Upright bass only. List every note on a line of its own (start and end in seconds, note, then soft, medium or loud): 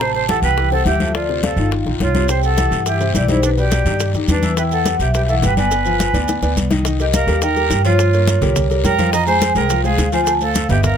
0.00 0.37 A1 medium
0.42 0.82 C2 medium
0.85 1.52 D2 medium
1.56 1.83 G1 medium
1.86 1.99 A#1 medium
2.00 2.66 C2 medium
2.71 3.11 G2 medium
3.14 3.80 B1 medium
3.85 4.12 G2 medium
4.14 4.27 F2 medium
4.28 4.94 E2 medium
4.99 5.39 B1 medium
5.42 6.08 G1 medium
6.14 6.40 D2 medium
6.42 6.56 D2 medium
6.56 7.22 C2 medium
7.27 7.67 D#2 medium
7.70 8.36 G2 medium
8.41 8.81 C2 medium
8.84 9.50 F2 medium
9.55 9.95 C2 medium
9.97 10.64 D2 medium
10.69 10.97 G1 medium